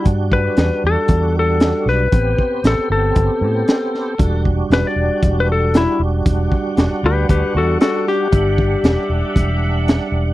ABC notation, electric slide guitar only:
X:1
M:4/4
L:1/16
Q:"Swing 16ths" 1/4=116
K:Em
V:1 name="Electric slide guitar"
z2 B4 A4 A4 B2- | B4 A2 A8- A2- | A2 z2 B d4 B A2 E2 z2 | z6 [GB]2 [GB]2 [FA]2 [FA]2 G2- |
G8- G2 z6 |]